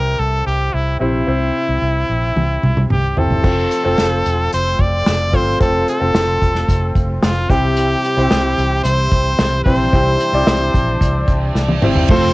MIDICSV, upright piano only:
0, 0, Header, 1, 2, 480
1, 0, Start_track
1, 0, Key_signature, -1, "major"
1, 0, Tempo, 540833
1, 1134, Time_signature, 4, 2, 24, 8
1, 10947, End_track
2, 0, Start_track
2, 0, Title_t, "Upright piano"
2, 0, Program_c, 0, 0
2, 0, Control_c, 0, 64, 127
2, 0, Note_on_c, 0, 48, 67
2, 0, Note_on_c, 0, 60, 81
2, 0, Note_on_c, 0, 64, 69
2, 0, Note_on_c, 0, 67, 71
2, 0, Note_on_c, 0, 72, 83
2, 881, Note_off_c, 0, 60, 0
2, 881, Note_on_c, 0, 60, 60
2, 888, Note_off_c, 0, 64, 0
2, 888, Note_on_c, 0, 64, 58
2, 890, Note_off_c, 0, 48, 0
2, 890, Note_on_c, 0, 48, 50
2, 891, Note_off_c, 0, 67, 0
2, 891, Note_on_c, 0, 67, 53
2, 899, Note_off_c, 0, 72, 0
2, 899, Note_on_c, 0, 72, 67
2, 1075, Note_off_c, 0, 60, 0
2, 1078, Note_off_c, 0, 64, 0
2, 1080, Note_off_c, 0, 67, 0
2, 1084, Note_off_c, 0, 72, 0
2, 1127, Note_on_c, 0, 60, 63
2, 1131, Note_on_c, 0, 64, 58
2, 1135, Note_on_c, 0, 67, 57
2, 1139, Note_on_c, 0, 72, 70
2, 1576, Note_off_c, 0, 48, 0
2, 1879, Note_off_c, 0, 60, 0
2, 1881, Note_off_c, 0, 64, 0
2, 1883, Note_off_c, 0, 67, 0
2, 1885, Note_off_c, 0, 72, 0
2, 2811, Note_on_c, 0, 60, 65
2, 2813, Note_on_c, 0, 64, 63
2, 2819, Note_on_c, 0, 67, 65
2, 2821, Note_on_c, 0, 72, 76
2, 3000, Note_off_c, 0, 60, 0
2, 3001, Note_off_c, 0, 64, 0
2, 3004, Note_off_c, 0, 67, 0
2, 3005, Note_off_c, 0, 72, 0
2, 3043, Note_on_c, 0, 60, 64
2, 3045, Note_on_c, 0, 65, 57
2, 3051, Note_on_c, 0, 69, 57
2, 3057, Note_on_c, 0, 72, 69
2, 3065, Control_c, 0, 64, 0
2, 3213, Control_c, 0, 64, 127
2, 3330, Note_off_c, 0, 60, 0
2, 3331, Note_off_c, 0, 65, 0
2, 3333, Note_off_c, 0, 69, 0
2, 3336, Note_off_c, 0, 72, 0
2, 3405, Note_on_c, 0, 60, 69
2, 3410, Note_on_c, 0, 65, 69
2, 3415, Note_on_c, 0, 69, 64
2, 3418, Note_on_c, 0, 72, 78
2, 4159, Note_off_c, 0, 60, 0
2, 4161, Note_off_c, 0, 65, 0
2, 4163, Note_off_c, 0, 69, 0
2, 4165, Note_off_c, 0, 72, 0
2, 4726, Note_on_c, 0, 60, 59
2, 4730, Note_on_c, 0, 65, 60
2, 4736, Note_on_c, 0, 69, 58
2, 4740, Note_on_c, 0, 72, 70
2, 4917, Note_off_c, 0, 60, 0
2, 4920, Note_off_c, 0, 65, 0
2, 4922, Note_off_c, 0, 69, 0
2, 4924, Note_off_c, 0, 72, 0
2, 4963, Note_on_c, 0, 60, 68
2, 4967, Note_on_c, 0, 65, 61
2, 4972, Note_on_c, 0, 69, 59
2, 4976, Note_on_c, 0, 72, 77
2, 5250, Note_off_c, 0, 60, 0
2, 5252, Note_off_c, 0, 65, 0
2, 5254, Note_off_c, 0, 69, 0
2, 5256, Note_off_c, 0, 72, 0
2, 5323, Note_on_c, 0, 60, 64
2, 5326, Note_on_c, 0, 65, 52
2, 5331, Note_on_c, 0, 69, 55
2, 5338, Note_on_c, 0, 72, 64
2, 6078, Note_off_c, 0, 60, 0
2, 6079, Note_off_c, 0, 65, 0
2, 6082, Note_off_c, 0, 69, 0
2, 6085, Note_off_c, 0, 72, 0
2, 6652, Note_on_c, 0, 60, 73
2, 6653, Note_on_c, 0, 64, 67
2, 6656, Note_on_c, 0, 48, 59
2, 6659, Note_on_c, 0, 67, 66
2, 6664, Note_on_c, 0, 72, 76
2, 6666, Control_c, 0, 64, 0
2, 6804, Control_c, 0, 64, 127
2, 7134, Note_off_c, 0, 60, 0
2, 7134, Note_off_c, 0, 64, 0
2, 7137, Note_off_c, 0, 67, 0
2, 7140, Note_off_c, 0, 72, 0
2, 7249, Note_on_c, 0, 60, 72
2, 7255, Note_on_c, 0, 64, 68
2, 7256, Note_on_c, 0, 67, 71
2, 7263, Note_on_c, 0, 72, 87
2, 7340, Note_off_c, 0, 48, 0
2, 8001, Note_off_c, 0, 60, 0
2, 8004, Note_off_c, 0, 64, 0
2, 8004, Note_off_c, 0, 67, 0
2, 8008, Note_off_c, 0, 72, 0
2, 8569, Note_on_c, 0, 60, 69
2, 8570, Note_on_c, 0, 64, 60
2, 8574, Note_on_c, 0, 48, 60
2, 8576, Note_on_c, 0, 67, 63
2, 8578, Note_on_c, 0, 72, 81
2, 8759, Note_off_c, 0, 60, 0
2, 8760, Note_off_c, 0, 64, 0
2, 8763, Note_off_c, 0, 67, 0
2, 8764, Note_off_c, 0, 72, 0
2, 8807, Note_on_c, 0, 60, 68
2, 8813, Note_on_c, 0, 64, 64
2, 8818, Note_on_c, 0, 67, 66
2, 8819, Note_on_c, 0, 72, 77
2, 9092, Note_off_c, 0, 60, 0
2, 9095, Note_off_c, 0, 64, 0
2, 9097, Note_off_c, 0, 67, 0
2, 9098, Note_off_c, 0, 72, 0
2, 9166, Note_on_c, 0, 60, 71
2, 9173, Note_on_c, 0, 64, 72
2, 9177, Note_on_c, 0, 67, 72
2, 9179, Note_on_c, 0, 74, 86
2, 9259, Note_off_c, 0, 48, 0
2, 9920, Note_off_c, 0, 60, 0
2, 9923, Note_off_c, 0, 64, 0
2, 9925, Note_off_c, 0, 67, 0
2, 9926, Note_off_c, 0, 74, 0
2, 10491, Note_on_c, 0, 60, 80
2, 10497, Note_on_c, 0, 64, 77
2, 10501, Note_on_c, 0, 67, 76
2, 10506, Note_on_c, 0, 72, 88
2, 10680, Note_off_c, 0, 60, 0
2, 10684, Note_off_c, 0, 64, 0
2, 10685, Note_off_c, 0, 67, 0
2, 10688, Note_off_c, 0, 72, 0
2, 10734, Note_on_c, 0, 60, 69
2, 10737, Note_on_c, 0, 65, 67
2, 10741, Note_on_c, 0, 69, 67
2, 10745, Note_on_c, 0, 72, 78
2, 10746, Control_c, 0, 64, 0
2, 10904, Control_c, 0, 64, 127
2, 10947, Note_off_c, 0, 60, 0
2, 10947, Note_off_c, 0, 65, 0
2, 10947, Note_off_c, 0, 69, 0
2, 10947, Note_off_c, 0, 72, 0
2, 10947, End_track
0, 0, End_of_file